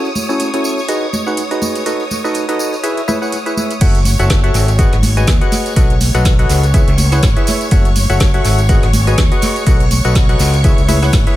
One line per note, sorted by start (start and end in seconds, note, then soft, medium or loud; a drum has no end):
0.00 3.80 C#5 medium
0.00 3.82 D#6 medium
0.05 tambourine soft
0.15 tambourine loud
0.15 tambourine medium
0.15 high conga medium
0.29 0.49 C#4 medium
0.29 0.49 E4 medium
0.29 0.49 F#4 medium
0.29 0.49 A4 medium
0.29 0.49 C#5 loud
0.29 tambourine soft
0.39 closed hi-hat medium
0.39 tambourine soft
0.54 0.80 C#4 medium
0.54 0.80 E4 medium
0.54 0.80 F#4 medium
0.54 0.80 A4 medium
0.54 0.80 C#5 medium
0.54 closed hi-hat soft
0.54 tambourine soft
0.64 tambourine medium
0.78 tambourine soft
0.88 1.06 D#4 medium
0.88 1.06 F#4 medium
0.88 1.06 G#4 medium
0.88 1.06 B4 medium
0.88 1.06 D#5 loud
0.88 closed hi-hat medium
0.88 tambourine soft
1.13 tambourine medium
1.13 high conga medium
1.26 1.42 D#4 medium
1.26 1.42 F#4 medium
1.26 1.42 G#4 medium
1.26 1.42 B4 medium
1.26 1.42 F#5 medium
1.26 tambourine soft
1.37 closed hi-hat medium
1.37 tambourine soft
1.51 1.83 D#4 medium
1.51 1.83 F#4 medium
1.51 1.83 G#4 medium
1.51 1.83 B4 medium
1.51 1.83 D#5 medium
1.51 closed hi-hat soft
1.51 tambourine soft
1.62 tambourine medium
1.62 high conga medium
1.75 closed hi-hat soft
1.75 tambourine soft
1.86 2.04 D#4 medium
1.86 2.04 F#4 medium
1.86 2.04 A4 medium
1.86 2.04 B4 medium
1.86 2.04 D#5 medium
1.86 closed hi-hat medium
1.86 tambourine soft
2.00 tambourine soft
2.11 tambourine medium
2.11 high conga medium
2.24 2.45 D#4 medium
2.24 2.45 F#4 medium
2.24 2.45 A4 medium
2.24 2.45 B4 medium
2.24 2.45 D#5 loud
2.24 tambourine soft
2.34 closed hi-hat medium
2.34 tambourine medium
2.34 tambourine soft
2.49 2.75 D#4 medium
2.49 2.75 F#4 medium
2.49 2.75 A4 medium
2.49 2.75 B4 medium
2.49 2.75 D#5 loud
2.49 closed hi-hat soft
2.49 tambourine soft
2.59 tambourine loud
2.59 tambourine medium
2.73 tambourine soft
2.83 3.01 E4 loud
2.83 3.01 G#4 medium
2.83 3.01 B4 medium
2.83 3.01 C#5 medium
2.83 3.01 E5 loud
2.83 closed hi-hat medium
2.83 tambourine medium
2.83 tambourine soft
2.97 closed hi-hat soft
2.97 tambourine soft
3.08 3.18 E4 loud
3.08 3.18 G#4 medium
3.08 3.18 B4 medium
3.08 3.18 C#5 medium
3.08 3.18 E5 loud
3.08 tambourine medium
3.08 high conga medium
3.22 3.38 E4 medium
3.22 3.38 G#4 medium
3.22 3.38 B4 medium
3.22 3.38 C#5 medium
3.22 3.38 F#5 medium
3.22 tambourine soft
3.32 closed hi-hat medium
3.32 tambourine soft
3.46 3.73 E4 medium
3.46 3.73 G#4 medium
3.46 3.73 B4 medium
3.46 3.73 C#5 medium
3.46 3.73 E5 medium
3.46 closed hi-hat soft
3.46 tambourine soft
3.57 tambourine medium
3.57 high conga medium
3.71 closed hi-hat soft
3.71 tambourine soft
3.81 4.15 F#1 loud
3.81 3.99 F#4 medium
3.81 3.99 A4 medium
3.81 11.36 C#5 medium
3.81 3.99 C#5 medium
3.81 3.99 E5 medium
3.81 3.99 F#5 loud
3.81 11.36 C#6 medium
3.81 kick loud
3.81 closed hi-hat loud
3.81 tambourine soft
3.81 crash loud
3.95 closed hi-hat soft
4.05 open hi-hat loud
4.05 tambourine loud
4.05 tambourine medium
4.05 high conga medium
4.19 4.51 F#1 medium
4.19 4.40 F#4 medium
4.19 4.40 A4 medium
4.19 4.40 C#5 medium
4.19 4.40 E5 medium
4.19 4.40 F#5 loud
4.19 closed hi-hat soft
4.19 tambourine soft
4.30 kick loud
4.30 snare loud
4.30 closed hi-hat loud
4.30 tambourine soft
4.43 4.70 F#4 medium
4.43 4.70 A4 medium
4.43 4.70 C#5 medium
4.43 4.70 E5 medium
4.43 4.70 F#5 loud
4.43 closed hi-hat soft
4.54 4.88 G#1 loud
4.54 open hi-hat medium
4.54 tambourine medium
4.68 closed hi-hat soft
4.68 tambourine medium
4.68 tambourine soft
4.78 4.97 F#4 loud
4.78 4.96 G#4 medium
4.78 4.97 B4 medium
4.78 4.97 D#5 medium
4.78 4.97 F#5 loud
4.78 kick loud
4.78 closed hi-hat loud
4.78 tambourine soft
4.80 tambourine soft
4.93 5.24 G#1 medium
4.93 snare soft
4.93 closed hi-hat soft
5.03 open hi-hat loud
5.03 tambourine medium
5.03 high conga loud
5.17 5.33 F#4 medium
5.17 5.33 G#4 medium
5.17 5.33 B4 medium
5.17 5.33 D#5 medium
5.17 5.33 G#5 medium
5.17 closed hi-hat soft
5.17 tambourine medium
5.17 tambourine soft
5.27 5.38 D#2 loud
5.27 kick loud
5.27 snare loud
5.27 closed hi-hat loud
5.27 tambourine soft
5.41 5.74 F#4 medium
5.41 5.74 G#4 medium
5.41 5.74 B4 medium
5.41 5.74 D#5 medium
5.41 5.74 F#5 medium
5.41 closed hi-hat soft
5.52 open hi-hat medium
5.52 tambourine medium
5.52 high conga medium
5.66 closed hi-hat soft
5.66 tambourine medium
5.66 tambourine soft
5.76 6.10 B1 loud
5.76 5.94 F#4 medium
5.76 5.94 A4 medium
5.76 5.94 B4 medium
5.76 5.94 D#5 medium
5.76 5.94 F#5 loud
5.76 kick loud
5.76 closed hi-hat loud
5.76 tambourine soft
5.90 closed hi-hat soft
6.00 open hi-hat loud
6.00 tambourine loud
6.00 tambourine medium
6.00 high conga medium
6.14 6.46 B1 medium
6.14 6.35 F#4 medium
6.14 6.35 A4 medium
6.14 6.35 B4 medium
6.14 6.35 D#5 medium
6.14 6.35 F#5 loud
6.14 closed hi-hat soft
6.14 tambourine medium
6.14 tambourine soft
6.25 kick loud
6.25 snare loud
6.25 closed hi-hat loud
6.25 tambourine soft
6.39 6.65 F#4 medium
6.39 6.65 A4 medium
6.39 6.65 B4 medium
6.39 6.66 D#5 medium
6.39 6.65 F#5 loud
6.39 closed hi-hat soft
6.49 6.83 C#2 loud
6.49 open hi-hat medium
6.49 tambourine loud
6.49 tambourine medium
6.63 closed hi-hat soft
6.63 tambourine medium
6.63 tambourine soft
6.74 6.92 E4 loud
6.74 6.92 G#4 medium
6.74 6.92 B4 medium
6.74 6.92 C#5 medium
6.74 6.92 E5 loud
6.74 kick loud
6.74 closed hi-hat medium
6.74 tambourine soft
6.88 7.19 C#2 medium
6.88 closed hi-hat soft
6.98 open hi-hat loud
6.98 tambourine medium
6.98 high conga medium
7.12 7.28 E4 medium
7.12 7.28 G#4 medium
7.12 7.28 B4 medium
7.12 7.28 C#5 medium
7.12 7.28 F#5 medium
7.12 snare soft
7.12 closed hi-hat soft
7.12 tambourine medium
7.12 tambourine soft
7.22 7.34 G#1 loud
7.22 kick loud
7.22 snare loud
7.22 closed hi-hat medium
7.22 tambourine soft
7.36 7.69 E4 medium
7.36 7.69 G#4 medium
7.36 7.69 B4 medium
7.36 7.69 C#5 medium
7.36 7.69 E5 medium
7.36 closed hi-hat soft
7.47 open hi-hat medium
7.47 tambourine loud
7.47 tambourine medium
7.47 high conga medium
7.61 closed hi-hat soft
7.61 tambourine medium
7.61 tambourine soft
7.71 8.05 F#1 loud
7.71 7.89 F#4 medium
7.71 7.89 A4 medium
7.71 7.89 C#5 medium
7.71 7.89 E5 medium
7.71 7.89 F#5 loud
7.71 kick loud
7.71 closed hi-hat medium
7.71 tambourine soft
7.85 closed hi-hat soft
7.96 open hi-hat loud
7.96 tambourine loud
7.96 tambourine medium
7.96 high conga medium
8.10 8.41 F#1 medium
8.10 8.30 F#4 medium
8.10 8.30 A4 medium
8.10 8.30 C#5 medium
8.10 8.30 E5 medium
8.10 8.30 F#5 loud
8.10 closed hi-hat soft
8.10 tambourine soft
8.10 tambourine medium
8.20 kick loud
8.20 snare loud
8.20 closed hi-hat medium
8.20 tambourine soft
8.34 8.61 F#4 medium
8.34 8.61 A4 medium
8.34 8.61 C#5 medium
8.34 8.61 E5 medium
8.34 8.61 F#5 loud
8.34 closed hi-hat soft
8.45 8.78 G#1 loud
8.45 open hi-hat medium
8.45 tambourine medium
8.58 closed hi-hat soft
8.58 tambourine medium
8.58 tambourine soft
8.69 8.87 F#4 loud
8.69 8.87 G#4 medium
8.69 8.87 B4 medium
8.69 8.87 D#5 medium
8.69 8.87 F#5 loud
8.69 kick loud
8.69 closed hi-hat medium
8.69 tambourine soft
8.83 9.14 G#1 medium
8.83 snare soft
8.83 closed hi-hat soft
8.93 open hi-hat loud
8.93 tambourine medium
8.93 tambourine loud
8.93 high conga loud
9.07 9.23 F#4 medium
9.07 9.23 G#4 medium
9.07 9.23 B4 medium
9.07 9.23 D#5 medium
9.07 9.23 G#5 medium
9.07 closed hi-hat soft
9.07 tambourine medium
9.07 tambourine soft
9.18 9.29 D#2 loud
9.18 kick loud
9.18 snare loud
9.18 closed hi-hat medium
9.18 tambourine soft
9.32 9.64 F#4 medium
9.32 9.64 G#4 medium
9.32 9.64 B4 medium
9.32 9.64 D#5 medium
9.32 9.64 F#5 medium
9.32 closed hi-hat soft
9.42 open hi-hat loud
9.42 tambourine loud
9.42 tambourine medium
9.42 high conga medium
9.56 closed hi-hat soft
9.56 tambourine medium
9.56 tambourine soft
9.66 10.00 B1 medium
9.66 9.84 F#4 medium
9.66 9.84 A4 medium
9.66 9.84 B4 medium
9.66 9.84 D#5 medium
9.66 9.84 F#5 loud
9.66 kick loud
9.66 closed hi-hat medium
9.66 tambourine soft
9.80 closed hi-hat soft
9.91 open hi-hat loud
9.91 tambourine medium
9.91 high conga medium
10.04 10.36 B1 medium
10.04 10.25 F#4 medium
10.04 10.25 A4 medium
10.04 10.25 B4 medium
10.04 10.25 D#5 medium
10.04 10.25 F#5 loud
10.04 closed hi-hat soft
10.04 tambourine medium
10.06 tambourine soft
10.14 kick loud
10.14 snare loud
10.14 closed hi-hat medium
10.14 tambourine soft
10.16 tambourine soft
10.29 10.56 F#4 medium
10.29 10.56 A4 medium
10.29 10.56 B4 medium
10.29 10.56 D#5 medium
10.29 10.56 F#5 loud
10.29 closed hi-hat soft
10.39 10.73 C#2 loud
10.39 open hi-hat medium
10.39 tambourine loud
10.39 tambourine medium
10.54 closed hi-hat soft
10.54 tambourine medium
10.54 tambourine soft
10.64 10.82 E4 loud
10.64 10.82 G#4 medium
10.64 10.82 B4 medium
10.64 10.82 C#5 loud
10.64 10.82 E5 loud
10.64 kick loud
10.64 closed hi-hat medium
10.64 tambourine soft
10.78 11.09 C#2 medium
10.78 closed hi-hat soft
10.78 tambourine soft
10.88 10.99 E4 loud
10.88 10.99 G#4 medium
10.88 10.99 B4 medium
10.88 10.99 C#5 medium
10.88 10.99 E5 loud
10.88 open hi-hat loud
10.88 tambourine medium
10.88 high conga medium
11.02 11.18 E4 medium
11.02 11.18 G#4 medium
11.02 11.18 B4 medium
11.02 11.18 C#5 medium
11.02 11.18 F#5 medium
11.02 snare soft
11.02 closed hi-hat soft
11.02 tambourine soft
11.02 tambourine medium
11.12 11.24 G#1 loud
11.12 kick loud
11.12 snare loud
11.12 closed hi-hat medium
11.12 tambourine soft
11.27 11.36 E4 medium
11.27 11.36 G#4 medium
11.27 11.36 B4 medium
11.27 11.36 C#5 medium
11.27 11.36 E5 medium
11.27 closed hi-hat soft